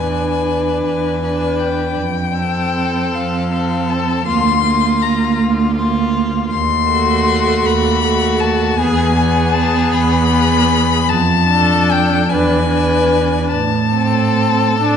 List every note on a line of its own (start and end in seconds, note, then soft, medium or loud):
0.00 0.71 E2 soft
0.00 0.83 G#5 medium
0.06 1.22 D4 soft
0.06 1.21 B4 soft
0.84 1.85 E2 soft
0.84 1.61 G#5 medium
1.23 1.97 D4 soft
1.23 1.97 B4 soft
1.59 3.16 G5 medium
1.97 3.00 F2 soft
2.36 3.50 C4 soft
2.36 3.50 A4 soft
3.13 4.13 F2 soft
3.13 3.91 F5 medium
3.53 4.26 C4 soft
3.53 4.26 A4 soft
3.90 4.26 A5 medium
4.26 5.26 D2 soft
4.26 4.62 A#3 soft
4.26 4.64 F4 soft
4.26 5.03 C6 medium
4.63 5.74 A#3 soft
4.63 5.75 F4 soft
5.02 5.39 A#5 medium
5.38 6.38 D2 soft
5.75 6.50 A#3 soft
5.75 6.50 F4 soft
6.52 7.52 D#2 medium
6.52 7.67 C6 medium
6.89 8.01 A3 medium
6.89 8.02 F#4 soft
7.65 8.65 D#2 medium
7.65 8.41 B5 medium
8.04 8.77 A3 medium
8.04 8.77 F#4 soft
8.40 8.78 A5 medium
8.77 9.80 E2 medium
8.77 9.16 B3 medium
8.77 9.17 G#4 medium
8.77 9.55 G#5 medium
9.17 10.30 B3 medium
9.17 10.31 G#4 medium
9.54 9.92 A5 medium
9.93 10.97 E2 medium
9.93 11.11 B5 medium
10.32 11.09 B3 medium
10.32 11.09 G#4 medium
11.09 12.16 F2 medium
11.09 11.92 A5 loud
11.49 12.28 D4 medium
11.49 12.30 A4 medium
11.91 12.31 G5 medium
12.29 13.38 E2 medium
12.29 12.69 D4 soft
12.29 12.70 B4 soft
12.29 13.51 G#5 medium
12.70 13.51 D4 soft
12.70 13.52 B4 soft
13.52 14.64 A2 medium
13.52 14.97 A5 medium
13.94 14.69 C4 medium
13.94 14.97 A4 soft
14.79 14.97 A2 medium
14.79 14.97 D4 medium